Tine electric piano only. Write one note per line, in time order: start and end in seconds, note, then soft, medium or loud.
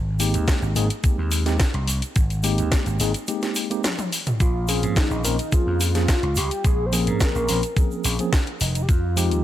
0.19 0.72 G#3 medium
0.19 0.73 A#3 medium
0.19 0.73 C4 medium
0.19 0.73 D#4 medium
0.19 0.73 G4 loud
0.75 0.87 G#3 medium
0.75 0.87 A#3 medium
0.75 0.87 C4 medium
0.75 0.87 D#4 medium
0.75 0.87 G#4 loud
1.03 1.43 G#3 medium
1.03 1.43 A#3 medium
1.03 1.43 C4 medium
1.03 1.43 D#4 medium
1.03 1.43 G4 medium
1.46 1.56 G#3 medium
1.46 1.56 A#3 medium
1.46 1.57 C4 medium
1.46 1.57 D#4 medium
1.46 1.57 G4 medium
2.43 2.96 G#3 medium
2.43 2.97 A#3 medium
2.43 2.97 C4 medium
2.43 2.97 D#4 medium
2.43 2.97 G4 loud
3.00 3.11 G#3 medium
3.00 3.11 A#3 medium
3.00 3.11 C4 medium
3.00 3.11 D#4 medium
3.00 3.12 G#4 loud
3.28 3.67 G#3 medium
3.28 3.67 A#3 medium
3.28 3.67 C4 medium
3.28 3.67 D#4 medium
3.28 3.68 G4 medium
3.70 3.81 G#3 medium
3.70 3.81 A#3 medium
3.70 3.81 C4 medium
3.70 3.81 D#4 medium
3.70 3.81 G4 medium
4.68 5.21 F3 medium
4.68 5.21 A#3 medium
4.68 5.21 C4 medium
4.68 5.21 C#4 medium
4.68 5.22 G#4 loud
5.24 5.35 F3 medium
5.24 5.35 A#3 medium
5.24 5.35 C4 medium
5.24 5.36 C#4 medium
5.24 5.35 A#4 loud
5.52 5.91 F3 medium
5.52 5.91 A#3 medium
5.52 5.92 C4 medium
5.52 5.92 C#4 medium
5.52 5.92 G#4 medium
5.95 6.05 F3 medium
5.95 6.05 A#3 medium
5.95 6.06 C4 medium
5.95 6.06 C#4 medium
5.95 6.06 G#4 medium
6.92 7.45 F3 medium
6.92 7.46 A#3 medium
6.92 7.46 C4 medium
6.92 7.46 C#4 medium
6.92 7.46 G#4 loud
7.49 7.60 F3 medium
7.49 7.60 A#3 medium
7.49 7.60 C4 medium
7.49 7.60 C#4 medium
7.49 7.60 A#4 loud
7.77 8.16 F3 medium
7.77 8.16 A#3 medium
7.77 8.16 C4 medium
7.77 8.16 C#4 medium
7.77 8.16 G#4 medium
8.19 8.30 F3 medium
8.19 8.30 A#3 medium
8.19 8.30 C4 medium
8.19 8.30 C#4 medium
8.19 8.30 G#4 medium
9.16 9.44 F3 medium
9.16 9.44 G#3 medium
9.16 9.44 C4 medium
9.16 9.44 D#4 medium
9.16 9.44 G4 loud